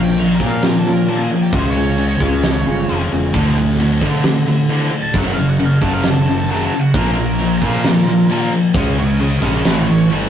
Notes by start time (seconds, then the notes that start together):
Already playing: A#1 A#2 F3 A#3 C#4 F4 A#4
0.03 G5
0.08 snare
0.18 A#2 F3 F5, crash
0.35 A#4
0.40 A#2 F3 A#3 C#4 F4 A#4, kick
0.47 F5
0.62 A#2 F3 A#4, snare, crash
0.80 A4
0.86 A#2 F3 A#3 C#4 F4 A#4
0.93 A#4
1.08 A#2 F3 A#3 A4, crash
1.24 G#4
1.31 A#2 F3 A#3 C#4 F4 A#4
1.42 G4
1.53 C#2 C#3 G#3 C#4 C5, kick, crash
1.70 C#5
1.76 C#3 G#3 C#4 F4 G#4
1.98 C#3 G#3, crash
2.20 C#2 C#3 G#3 C#4 F4 G#4, kick
2.42 C#3 G#3, snare, crash
2.65 G1 C#3 G#3 C#4 F4 G#4
2.89 F1 C#3 G#3 C#4, crash
3.12 E1 C#3 G#3 C#4 F4 G#4
3.33 D2 A2 D3, kick, crash
3.56 D2 A2
3.69 snare
3.79 D2 A2, crash
4.01 D2 A2 D3, kick
4.23 D2 A2, snare, crash
4.47 D2 A2
4.68 D2 A2 D3, crash
4.91 D2 A2
5.02 A5
5.13 F#1 F#2 C#3 F#3, kick, crash
5.18 F#5
5.34 F#2 C#3 F5
5.50 F#5
5.59 F#2 C#3, crash
5.65 F5
5.81 F#1 F#2 C#3 F#3 A4, kick
5.93 F5
6.03 F#2 C#3, snare, crash
6.11 A4
6.22 A4
6.28 F#2 C#3
6.38 A4
6.49 F#2 C#3 F#3 A4, crash
6.66 A4
6.73 F#2 C#3
6.79 F#4
6.94 A#1 A#2 F3 A#3 A#4, kick, crash
7.09 A#4
7.17 A#2 F3
7.39 A#2 F3, crash
7.62 A#2 F3 A#3, kick
7.84 A#2 F3, snare, crash
8.07 A#2 F3
8.29 A#2 F3 A#3, crash
8.52 A#2 F3
8.74 C#2 C#3 G#3 C#4, kick, crash
8.97 C#3 G#3 C#5 F5
9.19 C#3 G#3 C#5 F5, crash
9.41 A#1 C#3 G#3 C#4, kick
9.45 G#4 C#5
9.64 A1 A2 E3 A3 A4, snare, crash
9.69 C#5
9.86 A2 E3
9.91 C#5
10.10 G1 A2 E3 A3, crash